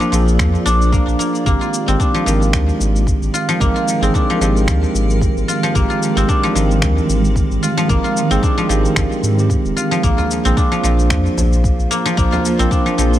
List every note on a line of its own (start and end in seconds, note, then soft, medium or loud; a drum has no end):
0.00 0.10 F3 medium
0.00 0.11 F3 medium
0.00 0.12 A#3 medium
0.00 0.92 A#3 loud
0.00 2.20 A#3 medium
0.00 1.87 C4 loud
0.00 0.13 D4 medium
0.00 0.65 D4 medium
0.00 1.61 F4 medium
0.00 2.18 F4 loud
0.00 1.48 A#4 medium
0.00 1.49 C5 medium
0.00 2.69 D5 medium
0.00 cabasa soft
0.10 0.40 A#1 medium
0.10 1.42 F3 medium
0.10 1.51 F3 medium
0.10 1.43 A#3 medium
0.10 1.44 D4 medium
0.10 cabasa medium
0.14 1.44 G#4 medium
0.28 cabasa soft
0.39 0.57 F2 medium
0.39 finger snap medium
0.39 kick loud
0.39 cabasa soft
0.55 cabasa soft
0.66 0.99 A#1 loud
0.66 1.99 D4 loud
0.66 cabasa medium
0.82 cabasa soft
0.92 1.19 A#3 medium
0.92 kick loud
0.92 cabasa soft
1.08 1.15 A#1 medium
1.08 cabasa soft
1.19 1.46 A#3 medium
1.19 cabasa medium
1.35 cabasa soft
1.45 1.55 G#1 loud
1.45 1.84 D#3 medium
1.45 1.84 G#3 medium
1.45 10.03 G#3 medium
1.45 3.60 A#3 loud
1.45 1.84 C4 medium
1.45 1.85 G4 medium
1.45 kick loud
1.45 cabasa soft
1.61 3.33 F4 medium
1.61 cabasa soft
1.74 cabasa medium
1.87 1.95 G#1 loud
1.87 2.23 D#3 medium
1.87 2.23 G#3 medium
1.87 4.02 C4 medium
1.87 2.24 C4 medium
1.87 2.24 G4 medium
1.87 cabasa soft
2.00 10.03 D#3 medium
2.00 4.14 D4 medium
2.00 kick loud
2.00 cabasa soft
2.14 2.25 F3 loud
2.14 cabasa soft
2.24 2.55 G#1 loud
2.24 3.57 D#3 medium
2.24 3.47 F3 medium
2.24 3.57 G#3 medium
2.24 3.58 C4 medium
2.24 3.58 A#4 loud
2.24 cabasa medium
2.42 cabasa soft
2.46 6.76 A#4 medium
2.53 2.71 D#2 medium
2.53 finger snap medium
2.53 kick loud
2.53 cabasa soft
2.69 cabasa soft
2.80 3.13 G#1 loud
2.80 cabasa medium
2.96 cabasa soft
3.07 kick loud
3.07 cabasa soft
3.22 3.29 G#1 medium
3.22 cabasa soft
3.34 3.75 F4 medium
3.34 cabasa medium
3.49 4.29 F3 loud
3.49 cabasa soft
3.60 3.70 G#1 loud
3.60 3.98 D#3 medium
3.60 3.98 G#3 medium
3.60 5.75 A#3 loud
3.60 3.99 C4 medium
3.60 3.99 A#4 medium
3.60 kick loud
3.60 cabasa soft
3.76 5.48 F4 medium
3.76 cabasa soft
3.88 cabasa medium
4.01 4.09 G#1 loud
4.01 4.38 D#3 medium
4.01 4.38 G#3 medium
4.01 4.38 C4 medium
4.01 6.16 C4 loud
4.01 4.38 G#4 medium
4.01 cabasa soft
4.14 6.28 D4 medium
4.14 kick loud
4.14 cabasa soft
4.30 4.40 F3 loud
4.30 cabasa soft
4.39 4.69 G#1 medium
4.39 5.71 D#3 medium
4.39 5.62 F3 medium
4.39 5.72 G#3 medium
4.39 5.72 C4 medium
4.39 cabasa medium
4.43 5.73 G4 loud
4.57 cabasa soft
4.68 4.85 D#2 medium
4.68 finger snap medium
4.68 kick loud
4.68 cabasa soft
4.84 cabasa soft
4.95 5.27 G#1 loud
4.95 cabasa medium
5.10 cabasa soft
5.21 kick loud
5.21 cabasa soft
5.36 5.43 G#1 medium
5.36 cabasa soft
5.48 5.89 F4 medium
5.48 cabasa medium
5.63 6.42 F3 loud
5.63 cabasa soft
5.74 5.84 G#1 loud
5.74 6.12 D#3 medium
5.74 6.13 G#3 medium
5.74 7.89 A#3 loud
5.74 6.13 C4 medium
5.74 6.13 G4 medium
5.74 kick loud
5.74 cabasa soft
5.90 7.62 F4 medium
5.90 cabasa soft
6.03 cabasa medium
6.16 6.24 G#1 loud
6.16 6.52 D#3 medium
6.16 6.52 G#3 medium
6.16 8.30 C4 loud
6.16 6.53 C4 medium
6.16 6.53 G4 medium
6.16 cabasa soft
6.29 8.42 D4 medium
6.29 kick loud
6.29 cabasa soft
6.43 6.54 F3 loud
6.43 cabasa soft
6.53 6.84 G#1 loud
6.53 7.85 D#3 medium
6.53 7.76 F3 medium
6.53 7.86 G#3 medium
6.53 7.87 C4 medium
6.53 7.87 A#4 loud
6.53 cabasa medium
6.71 cabasa soft
6.82 7.00 D#2 medium
6.82 finger snap medium
6.82 kick loud
6.82 cabasa soft
6.98 cabasa soft
7.09 7.41 G#1 loud
7.09 cabasa medium
7.25 cabasa soft
7.36 kick loud
7.36 cabasa soft
7.51 7.58 G#1 medium
7.51 cabasa soft
7.63 8.04 F4 medium
7.63 cabasa medium
7.77 8.56 F3 loud
7.77 cabasa soft
7.88 7.98 G#1 loud
7.88 8.27 D#3 medium
7.88 8.27 G#3 medium
7.88 10.03 A#3 loud
7.88 8.27 C4 medium
7.88 8.28 A#4 loud
7.88 kick loud
7.88 cabasa soft
8.04 9.76 F4 medium
8.04 cabasa soft
8.17 cabasa medium
8.30 8.38 G#1 loud
8.30 8.66 D#3 medium
8.30 8.66 G#3 medium
8.30 10.45 C4 loud
8.30 8.67 C4 medium
8.30 8.67 G#4 medium
8.30 cabasa soft
8.43 10.56 D4 medium
8.43 kick loud
8.43 cabasa soft
8.58 8.68 F3 loud
8.58 cabasa soft
8.67 8.87 G#1 loud
8.67 9.34 D#3 medium
8.67 9.90 F3 medium
8.67 9.34 G#3 medium
8.67 9.35 C4 medium
8.67 9.36 G4 medium
8.67 cabasa medium
8.85 cabasa soft
8.96 9.05 G#1 loud
8.96 finger snap medium
8.96 kick loud
8.96 cabasa soft
9.12 cabasa soft
9.23 9.56 G#2 medium
9.23 cabasa medium
9.36 9.99 D#3 medium
9.36 10.00 G#3 medium
9.36 10.01 C4 medium
9.36 cabasa soft
9.40 10.01 G4 medium
9.50 kick loud
9.50 cabasa soft
9.65 9.72 D#1 medium
9.65 cabasa soft
9.77 10.18 F4 medium
9.77 cabasa medium
9.91 10.08 F3 loud
9.91 cabasa soft
10.02 10.13 A#1 loud
10.02 10.41 F3 medium
10.02 10.41 A#3 medium
10.02 13.19 A#3 medium
10.02 11.90 A#3 loud
10.02 10.42 D4 medium
10.02 13.19 F4 medium
10.02 10.42 G#4 medium
10.02 13.19 F5 medium
10.02 kick loud
10.02 cabasa soft
10.18 12.32 F4 medium
10.18 frame drum medium
10.18 cabasa soft
10.28 13.19 C5 medium
10.28 cabasa medium
10.44 10.53 A#1 loud
10.44 10.80 F3 medium
10.44 10.81 A#3 medium
10.44 12.59 C4 medium
10.44 10.81 D4 medium
10.44 10.81 G#4 medium
10.44 cabasa soft
10.50 13.19 F4 medium
10.57 12.71 D4 medium
10.57 kick loud
10.57 cabasa soft
10.72 10.82 F3 loud
10.72 cabasa soft
10.82 11.12 A#1 loud
10.82 12.14 F3 medium
10.82 12.04 F3 medium
10.82 12.15 A#3 medium
10.82 12.15 D4 medium
10.82 cabasa medium
10.86 12.16 C5 loud
10.99 cabasa soft
11.10 11.28 F2 medium
11.10 finger snap medium
11.10 kick loud
11.10 cabasa soft
11.26 cabasa soft
11.37 11.70 A#1 loud
11.37 frame drum medium
11.37 cabasa medium
11.53 cabasa soft
11.62 13.19 D5 medium
11.62 kick loud
11.62 cabasa soft
11.79 11.86 A#1 medium
11.79 cabasa soft
11.91 12.17 A#3 loud
11.91 cabasa medium
12.05 12.85 F3 loud
12.05 cabasa soft
12.16 12.27 A#1 loud
12.16 12.55 F3 medium
12.16 12.55 A#3 medium
12.16 13.19 A#3 loud
12.16 12.56 D4 medium
12.16 12.56 C5 medium
12.16 kick loud
12.16 cabasa soft
12.32 13.19 F4 medium
12.32 frame drum medium
12.32 cabasa soft
12.45 cabasa medium
12.58 12.67 A#1 loud
12.58 12.95 F3 medium
12.58 12.95 A#3 medium
12.58 13.19 C4 loud
12.58 12.95 D4 medium
12.58 12.96 A#4 loud
12.58 cabasa soft
12.71 13.19 D4 medium
12.71 kick loud
12.71 cabasa soft
12.86 12.97 F3 loud
12.86 cabasa soft
12.96 13.19 A#1 loud
12.96 13.19 F3 medium
12.96 13.19 A#3 medium
12.96 13.19 D4 medium
12.96 13.19 G#4 medium
12.96 cabasa medium
13.14 cabasa soft